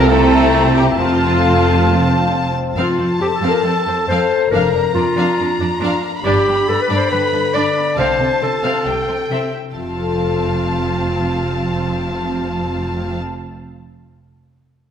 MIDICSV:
0, 0, Header, 1, 12, 480
1, 0, Start_track
1, 0, Key_signature, -1, "major"
1, 0, Tempo, 437637
1, 1092, Time_signature, 4, 2, 24, 8
1, 16352, End_track
2, 0, Start_track
2, 0, Title_t, "Flute section"
2, 0, Program_c, 0, 73
2, 0, Note_on_c, 0, 81, 59
2, 110, Note_off_c, 0, 81, 0
2, 119, Note_on_c, 0, 82, 57
2, 1088, Note_off_c, 0, 82, 0
2, 1093, Note_on_c, 0, 81, 53
2, 2757, Note_off_c, 0, 81, 0
2, 16352, End_track
3, 0, Start_track
3, 0, Title_t, "Violin section"
3, 0, Program_c, 1, 48
3, 114, Note_on_c, 1, 82, 50
3, 1072, Note_on_c, 1, 81, 44
3, 1085, Note_off_c, 1, 82, 0
3, 2767, Note_off_c, 1, 81, 0
3, 3034, Note_on_c, 1, 81, 40
3, 4909, Note_off_c, 1, 81, 0
3, 4968, Note_on_c, 1, 82, 39
3, 6831, Note_off_c, 1, 82, 0
3, 6867, Note_on_c, 1, 83, 44
3, 8735, Note_off_c, 1, 83, 0
3, 8780, Note_on_c, 1, 81, 36
3, 9715, Note_off_c, 1, 81, 0
3, 9719, Note_on_c, 1, 79, 30
3, 10475, Note_off_c, 1, 79, 0
3, 10708, Note_on_c, 1, 81, 27
3, 14458, Note_off_c, 1, 81, 0
3, 16352, End_track
4, 0, Start_track
4, 0, Title_t, "Cor anglais"
4, 0, Program_c, 2, 69
4, 0, Note_on_c, 2, 77, 57
4, 131, Note_on_c, 2, 76, 53
4, 148, Note_off_c, 2, 77, 0
4, 1094, Note_off_c, 2, 76, 0
4, 1098, Note_on_c, 2, 77, 52
4, 2760, Note_off_c, 2, 77, 0
4, 16352, End_track
5, 0, Start_track
5, 0, Title_t, "Violin section"
5, 0, Program_c, 3, 48
5, 93, Note_on_c, 3, 69, 81
5, 832, Note_off_c, 3, 69, 0
5, 834, Note_on_c, 3, 67, 68
5, 922, Note_off_c, 3, 67, 0
5, 1073, Note_on_c, 3, 65, 60
5, 2510, Note_off_c, 3, 65, 0
5, 3033, Note_on_c, 3, 77, 48
5, 3257, Note_off_c, 3, 77, 0
5, 3273, Note_on_c, 3, 69, 30
5, 3360, Note_off_c, 3, 69, 0
5, 3506, Note_on_c, 3, 72, 33
5, 3594, Note_off_c, 3, 72, 0
5, 3756, Note_on_c, 3, 77, 46
5, 3979, Note_off_c, 3, 77, 0
5, 4010, Note_on_c, 3, 69, 35
5, 4098, Note_off_c, 3, 69, 0
5, 4254, Note_on_c, 3, 72, 40
5, 4341, Note_off_c, 3, 72, 0
5, 4495, Note_on_c, 3, 77, 49
5, 4708, Note_off_c, 3, 77, 0
5, 4975, Note_on_c, 3, 77, 45
5, 5187, Note_off_c, 3, 77, 0
5, 5215, Note_on_c, 3, 70, 32
5, 5302, Note_off_c, 3, 70, 0
5, 5450, Note_on_c, 3, 74, 35
5, 5537, Note_off_c, 3, 74, 0
5, 5685, Note_on_c, 3, 77, 49
5, 5900, Note_off_c, 3, 77, 0
5, 5914, Note_on_c, 3, 70, 35
5, 6002, Note_off_c, 3, 70, 0
5, 6151, Note_on_c, 3, 74, 35
5, 6239, Note_off_c, 3, 74, 0
5, 6387, Note_on_c, 3, 77, 48
5, 6608, Note_off_c, 3, 77, 0
5, 6854, Note_on_c, 3, 74, 50
5, 7078, Note_off_c, 3, 74, 0
5, 7101, Note_on_c, 3, 67, 37
5, 7189, Note_off_c, 3, 67, 0
5, 7339, Note_on_c, 3, 71, 38
5, 7427, Note_off_c, 3, 71, 0
5, 7570, Note_on_c, 3, 74, 48
5, 7792, Note_on_c, 3, 67, 34
5, 7795, Note_off_c, 3, 74, 0
5, 7880, Note_off_c, 3, 67, 0
5, 8040, Note_on_c, 3, 71, 35
5, 8128, Note_off_c, 3, 71, 0
5, 8263, Note_on_c, 3, 74, 49
5, 8498, Note_off_c, 3, 74, 0
5, 8733, Note_on_c, 3, 77, 43
5, 8973, Note_off_c, 3, 77, 0
5, 8991, Note_on_c, 3, 69, 31
5, 9079, Note_off_c, 3, 69, 0
5, 9230, Note_on_c, 3, 72, 27
5, 9318, Note_off_c, 3, 72, 0
5, 9469, Note_on_c, 3, 77, 42
5, 9702, Note_off_c, 3, 77, 0
5, 9715, Note_on_c, 3, 67, 29
5, 9802, Note_off_c, 3, 67, 0
5, 9960, Note_on_c, 3, 72, 24
5, 10047, Note_off_c, 3, 72, 0
5, 10206, Note_on_c, 3, 76, 31
5, 10438, Note_off_c, 3, 76, 0
5, 10691, Note_on_c, 3, 77, 31
5, 14441, Note_off_c, 3, 77, 0
5, 16352, End_track
6, 0, Start_track
6, 0, Title_t, "Clarinet"
6, 0, Program_c, 4, 71
6, 0, Note_on_c, 4, 60, 63
6, 2740, Note_off_c, 4, 60, 0
6, 3044, Note_on_c, 4, 65, 56
6, 3486, Note_off_c, 4, 65, 0
6, 3523, Note_on_c, 4, 67, 58
6, 3593, Note_off_c, 4, 67, 0
6, 3667, Note_on_c, 4, 69, 52
6, 3827, Note_off_c, 4, 69, 0
6, 3834, Note_on_c, 4, 70, 55
6, 3990, Note_on_c, 4, 69, 57
6, 4006, Note_off_c, 4, 70, 0
6, 4467, Note_off_c, 4, 69, 0
6, 4474, Note_on_c, 4, 72, 54
6, 4935, Note_off_c, 4, 72, 0
6, 4941, Note_on_c, 4, 70, 63
6, 5415, Note_off_c, 4, 70, 0
6, 5425, Note_on_c, 4, 65, 60
6, 6597, Note_off_c, 4, 65, 0
6, 6847, Note_on_c, 4, 67, 65
6, 7329, Note_on_c, 4, 69, 63
6, 7346, Note_off_c, 4, 67, 0
6, 7469, Note_off_c, 4, 69, 0
6, 7476, Note_on_c, 4, 71, 60
6, 7552, Note_off_c, 4, 71, 0
6, 7636, Note_on_c, 4, 72, 55
6, 7795, Note_off_c, 4, 72, 0
6, 7801, Note_on_c, 4, 71, 65
6, 8272, Note_on_c, 4, 74, 56
6, 8288, Note_off_c, 4, 71, 0
6, 8752, Note_off_c, 4, 74, 0
6, 8758, Note_on_c, 4, 72, 62
6, 9231, Note_off_c, 4, 72, 0
6, 9237, Note_on_c, 4, 69, 53
6, 10429, Note_off_c, 4, 69, 0
6, 10708, Note_on_c, 4, 65, 37
6, 14458, Note_off_c, 4, 65, 0
6, 16352, End_track
7, 0, Start_track
7, 0, Title_t, "Trumpet section"
7, 0, Program_c, 5, 61
7, 0, Note_on_c, 5, 70, 67
7, 126, Note_on_c, 5, 57, 69
7, 128, Note_off_c, 5, 70, 0
7, 834, Note_off_c, 5, 57, 0
7, 843, Note_on_c, 5, 67, 49
7, 954, Note_off_c, 5, 67, 0
7, 1082, Note_on_c, 5, 65, 53
7, 2514, Note_off_c, 5, 65, 0
7, 16352, End_track
8, 0, Start_track
8, 0, Title_t, "Harp"
8, 0, Program_c, 6, 46
8, 0, Note_on_c, 6, 57, 46
8, 0, Note_on_c, 6, 60, 52
8, 0, Note_on_c, 6, 65, 47
8, 0, Note_on_c, 6, 69, 51
8, 0, Note_on_c, 6, 72, 51
8, 0, Note_on_c, 6, 77, 49
8, 0, Note_on_c, 6, 81, 49
8, 114, Note_on_c, 6, 48, 51
8, 140, Note_off_c, 6, 81, 0
8, 143, Note_off_c, 6, 69, 0
8, 147, Note_off_c, 6, 77, 0
8, 149, Note_off_c, 6, 57, 0
8, 151, Note_off_c, 6, 65, 0
8, 243, Note_on_c, 6, 55, 41
8, 339, Note_off_c, 6, 60, 0
8, 473, Note_on_c, 6, 64, 47
8, 603, Note_on_c, 6, 70, 44
8, 699, Note_off_c, 6, 72, 0
8, 959, Note_on_c, 6, 82, 39
8, 1081, Note_on_c, 6, 53, 48
8, 1104, Note_off_c, 6, 64, 0
8, 1105, Note_off_c, 6, 48, 0
8, 1106, Note_off_c, 6, 82, 0
8, 1109, Note_off_c, 6, 70, 0
8, 1110, Note_off_c, 6, 55, 0
8, 1332, Note_on_c, 6, 65, 36
8, 1456, Note_on_c, 6, 69, 40
8, 1576, Note_on_c, 6, 72, 38
8, 1693, Note_on_c, 6, 77, 39
8, 1940, Note_on_c, 6, 84, 39
8, 2063, Note_on_c, 6, 81, 36
8, 2171, Note_off_c, 6, 84, 0
8, 2184, Note_on_c, 6, 84, 39
8, 2284, Note_off_c, 6, 81, 0
8, 2297, Note_on_c, 6, 81, 38
8, 2408, Note_off_c, 6, 77, 0
8, 2422, Note_on_c, 6, 77, 38
8, 2533, Note_off_c, 6, 72, 0
8, 2547, Note_on_c, 6, 72, 35
8, 2653, Note_off_c, 6, 65, 0
8, 2666, Note_on_c, 6, 65, 34
8, 2793, Note_on_c, 6, 60, 37
8, 2897, Note_off_c, 6, 65, 0
8, 2910, Note_on_c, 6, 65, 33
8, 3020, Note_off_c, 6, 53, 0
8, 3033, Note_on_c, 6, 53, 43
8, 3262, Note_off_c, 6, 65, 0
8, 3275, Note_on_c, 6, 65, 33
8, 3494, Note_off_c, 6, 69, 0
8, 3507, Note_on_c, 6, 69, 35
8, 3755, Note_off_c, 6, 65, 0
8, 3768, Note_on_c, 6, 65, 31
8, 3992, Note_off_c, 6, 60, 0
8, 4006, Note_on_c, 6, 60, 29
8, 4236, Note_off_c, 6, 65, 0
8, 4250, Note_on_c, 6, 65, 34
8, 4477, Note_off_c, 6, 69, 0
8, 4490, Note_on_c, 6, 69, 34
8, 4718, Note_off_c, 6, 65, 0
8, 4731, Note_on_c, 6, 65, 34
8, 4959, Note_off_c, 6, 53, 0
8, 4967, Note_off_c, 6, 81, 0
8, 4970, Note_off_c, 6, 72, 0
8, 4971, Note_off_c, 6, 84, 0
8, 4972, Note_on_c, 6, 53, 44
8, 4977, Note_off_c, 6, 60, 0
8, 4979, Note_off_c, 6, 69, 0
8, 5209, Note_on_c, 6, 62, 34
8, 5446, Note_on_c, 6, 70, 37
8, 5667, Note_off_c, 6, 62, 0
8, 5929, Note_on_c, 6, 58, 34
8, 6162, Note_on_c, 6, 62, 39
8, 6375, Note_off_c, 6, 70, 0
8, 6388, Note_on_c, 6, 70, 40
8, 6610, Note_off_c, 6, 62, 0
8, 6623, Note_on_c, 6, 62, 40
8, 6699, Note_off_c, 6, 77, 0
8, 6846, Note_on_c, 6, 43, 52
8, 6882, Note_off_c, 6, 70, 0
8, 6889, Note_off_c, 6, 65, 0
8, 6890, Note_off_c, 6, 53, 0
8, 6890, Note_off_c, 6, 58, 0
8, 7091, Note_on_c, 6, 59, 36
8, 7305, Note_off_c, 6, 62, 0
8, 7319, Note_on_c, 6, 62, 38
8, 7546, Note_off_c, 6, 59, 0
8, 7559, Note_on_c, 6, 59, 34
8, 7799, Note_on_c, 6, 50, 33
8, 8033, Note_off_c, 6, 59, 0
8, 8046, Note_on_c, 6, 59, 33
8, 8269, Note_off_c, 6, 62, 0
8, 8282, Note_on_c, 6, 62, 33
8, 8514, Note_off_c, 6, 59, 0
8, 8527, Note_on_c, 6, 59, 33
8, 8749, Note_on_c, 6, 48, 40
8, 8781, Note_off_c, 6, 43, 0
8, 8781, Note_off_c, 6, 50, 0
8, 8784, Note_off_c, 6, 62, 0
8, 8787, Note_off_c, 6, 59, 0
8, 9239, Note_on_c, 6, 65, 31
8, 9477, Note_on_c, 6, 60, 27
8, 9714, Note_off_c, 6, 48, 0
8, 9727, Note_on_c, 6, 48, 30
8, 9744, Note_off_c, 6, 65, 0
8, 9958, Note_off_c, 6, 60, 0
8, 10212, Note_on_c, 6, 64, 21
8, 10456, Note_on_c, 6, 60, 20
8, 10699, Note_on_c, 6, 53, 26
8, 10721, Note_off_c, 6, 48, 0
8, 10721, Note_off_c, 6, 64, 0
8, 10765, Note_off_c, 6, 60, 0
8, 10778, Note_on_c, 6, 60, 25
8, 10854, Note_on_c, 6, 65, 26
8, 10931, Note_on_c, 6, 69, 26
8, 11010, Note_on_c, 6, 77, 26
8, 14528, Note_off_c, 6, 60, 0
8, 14604, Note_off_c, 6, 65, 0
8, 14681, Note_off_c, 6, 69, 0
8, 14760, Note_off_c, 6, 77, 0
8, 14893, Note_off_c, 6, 53, 0
8, 16352, End_track
9, 0, Start_track
9, 0, Title_t, "French horn section"
9, 0, Program_c, 7, 60
9, 94, Note_on_c, 7, 64, 58
9, 98, Note_on_c, 7, 46, 54
9, 1075, Note_off_c, 7, 64, 0
9, 1077, Note_off_c, 7, 46, 0
9, 1079, Note_on_c, 7, 65, 49
9, 1083, Note_on_c, 7, 57, 49
9, 1515, Note_off_c, 7, 65, 0
9, 1525, Note_off_c, 7, 57, 0
9, 1566, Note_on_c, 7, 57, 47
9, 2023, Note_off_c, 7, 57, 0
9, 2057, Note_on_c, 7, 58, 57
9, 2222, Note_off_c, 7, 58, 0
9, 2228, Note_on_c, 7, 60, 52
9, 2385, Note_off_c, 7, 60, 0
9, 2390, Note_on_c, 7, 62, 49
9, 2545, Note_on_c, 7, 60, 49
9, 2547, Note_off_c, 7, 62, 0
9, 3031, Note_off_c, 7, 60, 0
9, 16352, End_track
10, 0, Start_track
10, 0, Title_t, "Viola section"
10, 0, Program_c, 8, 48
10, 129, Note_on_c, 8, 60, 62
10, 133, Note_on_c, 8, 64, 59
10, 1073, Note_off_c, 8, 60, 0
10, 1090, Note_on_c, 8, 65, 56
10, 1095, Note_off_c, 8, 64, 0
10, 1095, Note_on_c, 8, 60, 51
10, 2776, Note_off_c, 8, 65, 0
10, 2779, Note_off_c, 8, 60, 0
10, 3044, Note_on_c, 8, 60, 44
10, 3263, Note_off_c, 8, 60, 0
10, 3289, Note_on_c, 8, 60, 32
10, 3377, Note_off_c, 8, 60, 0
10, 3529, Note_on_c, 8, 60, 35
10, 3616, Note_off_c, 8, 60, 0
10, 3767, Note_on_c, 8, 60, 41
10, 3985, Note_off_c, 8, 60, 0
10, 4006, Note_on_c, 8, 60, 35
10, 4094, Note_off_c, 8, 60, 0
10, 4256, Note_on_c, 8, 60, 31
10, 4344, Note_off_c, 8, 60, 0
10, 4490, Note_on_c, 8, 60, 49
10, 4705, Note_off_c, 8, 60, 0
10, 4953, Note_on_c, 8, 62, 50
10, 5175, Note_off_c, 8, 62, 0
10, 5197, Note_on_c, 8, 62, 34
10, 5285, Note_off_c, 8, 62, 0
10, 5431, Note_on_c, 8, 62, 36
10, 5519, Note_off_c, 8, 62, 0
10, 5665, Note_on_c, 8, 62, 44
10, 5888, Note_off_c, 8, 62, 0
10, 5912, Note_on_c, 8, 62, 38
10, 5999, Note_off_c, 8, 62, 0
10, 6137, Note_on_c, 8, 62, 39
10, 6225, Note_off_c, 8, 62, 0
10, 6367, Note_on_c, 8, 62, 54
10, 6597, Note_off_c, 8, 62, 0
10, 6843, Note_on_c, 8, 62, 53
10, 7072, Note_off_c, 8, 62, 0
10, 7100, Note_on_c, 8, 62, 36
10, 7188, Note_off_c, 8, 62, 0
10, 7338, Note_on_c, 8, 62, 40
10, 7426, Note_off_c, 8, 62, 0
10, 7563, Note_on_c, 8, 62, 48
10, 7787, Note_off_c, 8, 62, 0
10, 7800, Note_on_c, 8, 62, 37
10, 7888, Note_off_c, 8, 62, 0
10, 8036, Note_on_c, 8, 62, 36
10, 8123, Note_off_c, 8, 62, 0
10, 8270, Note_on_c, 8, 62, 47
10, 8502, Note_off_c, 8, 62, 0
10, 8756, Note_on_c, 8, 60, 47
10, 8980, Note_off_c, 8, 60, 0
10, 8993, Note_on_c, 8, 60, 33
10, 9081, Note_off_c, 8, 60, 0
10, 9229, Note_on_c, 8, 60, 27
10, 9317, Note_off_c, 8, 60, 0
10, 9479, Note_on_c, 8, 60, 39
10, 9701, Note_off_c, 8, 60, 0
10, 9715, Note_on_c, 8, 60, 33
10, 9802, Note_off_c, 8, 60, 0
10, 9965, Note_on_c, 8, 60, 23
10, 10053, Note_off_c, 8, 60, 0
10, 10217, Note_on_c, 8, 60, 32
10, 10444, Note_off_c, 8, 60, 0
10, 10713, Note_on_c, 8, 60, 34
10, 14463, Note_off_c, 8, 60, 0
10, 16352, End_track
11, 0, Start_track
11, 0, Title_t, "Cello section"
11, 0, Program_c, 10, 48
11, 0, Note_on_c, 10, 48, 66
11, 1045, Note_off_c, 10, 48, 0
11, 1086, Note_on_c, 10, 41, 54
11, 2809, Note_off_c, 10, 41, 0
11, 3033, Note_on_c, 10, 41, 48
11, 3121, Note_off_c, 10, 41, 0
11, 3275, Note_on_c, 10, 41, 34
11, 3363, Note_off_c, 10, 41, 0
11, 3510, Note_on_c, 10, 41, 35
11, 3598, Note_off_c, 10, 41, 0
11, 3743, Note_on_c, 10, 41, 45
11, 3831, Note_off_c, 10, 41, 0
11, 3989, Note_on_c, 10, 41, 33
11, 4077, Note_off_c, 10, 41, 0
11, 4234, Note_on_c, 10, 41, 32
11, 4322, Note_off_c, 10, 41, 0
11, 4473, Note_on_c, 10, 41, 49
11, 4561, Note_off_c, 10, 41, 0
11, 4954, Note_on_c, 10, 41, 48
11, 5041, Note_off_c, 10, 41, 0
11, 5190, Note_on_c, 10, 41, 37
11, 5277, Note_off_c, 10, 41, 0
11, 5431, Note_on_c, 10, 41, 38
11, 5518, Note_off_c, 10, 41, 0
11, 5662, Note_on_c, 10, 41, 50
11, 5750, Note_off_c, 10, 41, 0
11, 5905, Note_on_c, 10, 41, 35
11, 5993, Note_off_c, 10, 41, 0
11, 6140, Note_on_c, 10, 41, 32
11, 6227, Note_off_c, 10, 41, 0
11, 6379, Note_on_c, 10, 41, 53
11, 6467, Note_off_c, 10, 41, 0
11, 6862, Note_on_c, 10, 43, 59
11, 6949, Note_off_c, 10, 43, 0
11, 7094, Note_on_c, 10, 43, 40
11, 7182, Note_off_c, 10, 43, 0
11, 7328, Note_on_c, 10, 43, 38
11, 7416, Note_off_c, 10, 43, 0
11, 7566, Note_on_c, 10, 43, 51
11, 7654, Note_off_c, 10, 43, 0
11, 7804, Note_on_c, 10, 43, 36
11, 7892, Note_off_c, 10, 43, 0
11, 8040, Note_on_c, 10, 43, 34
11, 8128, Note_off_c, 10, 43, 0
11, 8276, Note_on_c, 10, 43, 46
11, 8364, Note_off_c, 10, 43, 0
11, 8750, Note_on_c, 10, 48, 46
11, 8837, Note_off_c, 10, 48, 0
11, 8986, Note_on_c, 10, 48, 31
11, 9073, Note_off_c, 10, 48, 0
11, 9234, Note_on_c, 10, 48, 29
11, 9322, Note_off_c, 10, 48, 0
11, 9473, Note_on_c, 10, 48, 41
11, 9560, Note_off_c, 10, 48, 0
11, 9713, Note_on_c, 10, 48, 26
11, 9801, Note_off_c, 10, 48, 0
11, 9960, Note_on_c, 10, 48, 24
11, 10048, Note_off_c, 10, 48, 0
11, 10205, Note_on_c, 10, 48, 28
11, 10292, Note_off_c, 10, 48, 0
11, 10696, Note_on_c, 10, 41, 31
11, 14446, Note_off_c, 10, 41, 0
11, 16352, End_track
12, 0, Start_track
12, 0, Title_t, "Double bass section"
12, 0, Program_c, 11, 48
12, 0, Note_on_c, 11, 36, 69
12, 1048, Note_off_c, 11, 36, 0
12, 1095, Note_on_c, 11, 29, 55
12, 2814, Note_off_c, 11, 29, 0
12, 3027, Note_on_c, 11, 29, 47
12, 3254, Note_off_c, 11, 29, 0
12, 4950, Note_on_c, 11, 29, 50
12, 5173, Note_off_c, 11, 29, 0
12, 6850, Note_on_c, 11, 31, 60
12, 7076, Note_off_c, 11, 31, 0
12, 8759, Note_on_c, 11, 36, 49
12, 8987, Note_off_c, 11, 36, 0
12, 9730, Note_on_c, 11, 36, 30
12, 9955, Note_off_c, 11, 36, 0
12, 10695, Note_on_c, 11, 29, 31
12, 14445, Note_off_c, 11, 29, 0
12, 16352, End_track
0, 0, End_of_file